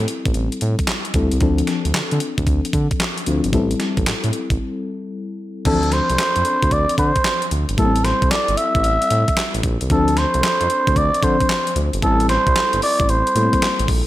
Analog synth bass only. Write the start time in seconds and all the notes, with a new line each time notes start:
0.26 A1
0.35 A1
0.62 A2
1.14 D2
1.32 C2
1.41 D2
1.85 D2
1.94 D3
2.12 D3
2.38 D2
2.47 D2
2.73 D3
3.27 D2
3.45 G1
3.53 A1
3.97 A1
4.07 A2
4.24 A2
4.50 A1
5.66 D2
6.10 C2
6.36 F2
6.63 D2
6.72 D2
6.98 D3
7.51 D2
7.69 G1
7.78 A1
8.22 C2
8.49 G1
8.75 A1
8.84 A1
9.11 A2
9.54 A1
9.64 A#1
9.81 C2
9.90 D2
10.35 C2
10.61 F2
10.88 D2
10.96 D2
11.23 D3
11.76 D2
11.93 G1
12.03 A1
12.47 C2
12.73 G1
13.00 A1
13.09 A1
13.35 A2
13.80 A1
13.88 A#1